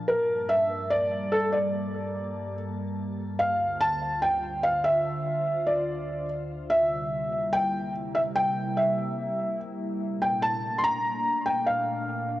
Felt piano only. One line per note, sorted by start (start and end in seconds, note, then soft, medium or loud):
0.08 0.51 A#4 medium
0.49 0.92 E5 loud
0.90 1.34 D5 loud
1.32 1.54 A4 medium
1.52 2.53 D5 medium
3.39 3.82 F5 loud
3.81 4.24 A5 loud
4.22 4.65 G5 loud
4.63 4.85 F5 loud
4.84 5.70 E5 loud
5.67 6.25 D5 medium
6.70 7.56 E5 loud
7.53 7.92 G5 loud
8.15 8.20 E5 medium
8.36 8.79 G5 loud
8.77 9.56 E5 medium
10.22 10.42 G5 loud
10.42 10.80 A5 loud
10.78 10.84 C6 medium
10.84 11.48 A#5 loud
11.46 11.68 G5 medium
11.67 12.40 F5 medium